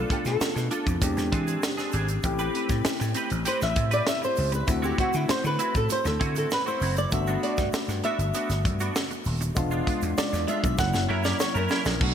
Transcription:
Already playing: A3 B3 D4 F4 A4
0.09 D4 F4 G4 A4, kick, closed hi-hat
0.25 B2 A4, muted clean electric guitar stroke, snare, closed hi-hat, shaker
0.40 muted clean electric guitar stroke, muted slap bass stroke, snare, shaker
0.56 B2, muted clean electric guitar stroke, snare, closed hi-hat, shaker
0.71 D4 F4 A4, closed hi-hat, shaker
0.86 F2, muted clean electric guitar stroke, kick, closed hi-hat, shaker
1.01 E2 G#3 C4 D4 G4, muted clean electric guitar stroke, kick, closed hi-hat, shaker
1.17 E2, muted clean electric guitar stroke, snare, closed hi-hat, shaker
1.32 E3 C4 D4 G#4, kick, closed hi-hat
1.47 C4 D4 G#4, closed hi-hat, shaker
1.62 muted clean electric guitar stroke, snare, shaker
1.77 C4 D4 G#4, snare, closed hi-hat, shaker
1.92 G#1 C4 D4 G#4, closed hi-hat, shaker
2.08 muted clean electric guitar stroke, closed hi-hat, shaker
2.23 A1 A3 C4 E4 G4, muted clean electric guitar stroke, kick, closed hi-hat, shaker
2.39 C4 G4 B4, closed hi-hat, shaker
2.54 C4 G4 B4, closed hi-hat
2.69 A2, muted clean electric guitar stroke, kick, snare, closed hi-hat, shaker
2.85 muted clean electric guitar stroke, muted slap bass stroke, snare, shaker
3.00 A2, muted clean electric guitar stroke, snare, closed hi-hat, shaker
3.14 C4 G4 B4, closed hi-hat, shaker
3.30 A1, muted clean electric guitar stroke, closed hi-hat, shaker
3.45 C4 G4 B4 C5, closed hi-hat, shaker
3.61 A1 E5, muted clean electric guitar stroke, snare, shaker
3.76 A2, muted clean electric guitar stroke, kick, closed hi-hat
3.91 C4 G4 B4 D5, closed hi-hat, shaker
4.07 E5, snare, shaker
4.22 C5, muted clean electric guitar stroke, shaker
4.36 C#2, open hi-hat, shaker
4.52 B4, muted clean electric guitar stroke, closed hi-hat, shaker
4.67 D2 A3 C4 E4 F#4 A4, muted clean electric guitar stroke, kick, closed hi-hat, shaker
4.82 C4 E4 F#4 G4, shaker
4.98 C4 E4 F#4, kick, closed hi-hat
5.13 D3 E4, muted clean electric guitar stroke, closed hi-hat, shaker
5.28 C5, muted clean electric guitar stroke, muted slap bass stroke, snare, shaker
5.44 D3 B4, muted clean electric guitar stroke, closed hi-hat, shaker
5.59 C4 E4 F#4, closed hi-hat, shaker
5.74 A2 A4, muted clean electric guitar stroke, kick, closed hi-hat, shaker
5.90 C5, muted clean electric guitar stroke, closed hi-hat, shaker
6.05 D2 A4, muted clean electric guitar stroke, snare, closed hi-hat, shaker
6.20 D3 C4 E4 F#4, kick, closed hi-hat
6.35 C4 E4 F#4 A4, closed hi-hat, shaker
6.51 B4, snare, shaker
6.66 C4 E4 F#4 C5, shaker
6.81 F#1 C4 E4 F#4, open hi-hat, shaker
6.97 D5, muted clean electric guitar stroke, closed hi-hat, shaker
7.11 G1 A3 B3 D4 F#4 E5, muted clean electric guitar stroke, kick, closed hi-hat, shaker
7.27 B3 D4 F#4, shaker
7.43 B3 D4 F#4 D5, closed hi-hat
7.57 G2, muted clean electric guitar stroke, kick, snare, closed hi-hat, shaker
7.73 muted slap bass stroke, muted clean electric guitar stroke, snare, shaker
7.88 G2, muted clean electric guitar stroke, snare, closed hi-hat, shaker
8.04 B3 D4 F#4 E5, closed hi-hat, shaker
8.19 G1, muted clean electric guitar stroke, closed hi-hat, shaker
8.34 B3 D4 F#4, closed hi-hat, shaker
8.49 G1, muted clean electric guitar stroke, snare, closed hi-hat, shaker
8.65 G2, muted clean electric guitar stroke, kick, closed hi-hat
8.80 B3 D4 F#4, closed hi-hat, shaker
8.95 muted clean electric guitar stroke, snare, shaker
9.11 muted clean electric guitar stroke, closed hi-hat, shaker
9.25 D#1, open hi-hat, shaker
9.41 muted clean electric guitar stroke, closed hi-hat, shaker
9.55 E1 G#3 B3 D4 F4, muted clean electric guitar stroke, kick, closed hi-hat, shaker
9.71 G#3 D4 F4, shaker
9.87 G#3 D4 F4, kick, closed hi-hat
10.02 E2, muted clean electric guitar stroke, closed hi-hat, shaker
10.18 D5, muted clean electric guitar stroke, muted slap bass stroke, snare, shaker
10.33 E2, muted clean electric guitar stroke, snare, closed hi-hat, shaker
10.48 G#3 D4 F4 E5, closed hi-hat, shaker
10.63 B1 E5, muted clean electric guitar stroke, kick, closed hi-hat, shaker
10.77 F#1 F#3 A#3 C#4 E4 F#5, muted clean electric guitar stroke, kick, snare, shaker
10.93 F#1, muted clean electric guitar stroke, snare, shaker
11.09 F#2 C#4 E4 A#4 E5
11.24 C#4 E4 A#4 D5, snare, shaker
11.39 C#5, muted clean electric guitar stroke, snare, shaker
11.54 F#2 C#4 E4 A#4, shaker
11.69 C#4 E4 A#4, snare, shaker
11.85 A#1, muted clean electric guitar stroke, snare, shaker
12.00 B1 A3 B3 D4 F#4, muted clean electric guitar stroke, kick, crash

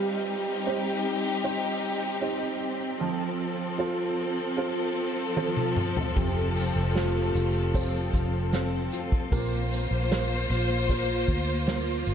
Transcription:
Already playing: G3 C4 D#4 G4
0.66 D#4 G4 C5
1.43 D#4 G4 C5
2.21 D#4 G4 C5
3.00 F3 A4
3.78 F4 A4 C5
4.57 F4 A4 C5
5.36 F4 A4 C5, high tom
5.57 mid tom
5.76 mid tom
5.97 floor tom
6.16 F1 F2 C3, kick, open hi-hat, shaker
6.37 shaker
6.56 C4, hi-hat pedal, open hi-hat
6.76 F1, shaker
6.95 A3 F4 A4 C5, snare, hi-hat pedal, open hi-hat, shaker
7.16 shaker
7.35 F1 F4, hi-hat pedal, open hi-hat
7.56 shaker
7.74 C4 F4 A4 C5, kick, hi-hat pedal, open hi-hat, shaker
7.94 shaker
8.13 F1 F4, kick, hi-hat pedal, open hi-hat, shaker
8.34 shaker
8.53 C4 F4 A4 C5, snare, hi-hat pedal, open hi-hat, shaker
8.74 shaker
8.92 F4, hi-hat pedal, open hi-hat
9.12 kick, shaker
9.32 A#1 A#3 F4 C5, kick, hi-hat pedal, open hi-hat
9.71 hi-hat pedal, open hi-hat
9.91 A#1
10.11 F4 A#4 C5, snare, hi-hat pedal, open hi-hat
10.50 A#1, hi-hat pedal, open hi-hat
10.89 F4 A#4 C5, kick, hi-hat pedal, open hi-hat
11.28 D2, kick, hi-hat pedal, open hi-hat
11.67 F4 A#4 C5, snare, hi-hat pedal, open hi-hat
12.05 G1, hi-hat pedal, open hi-hat

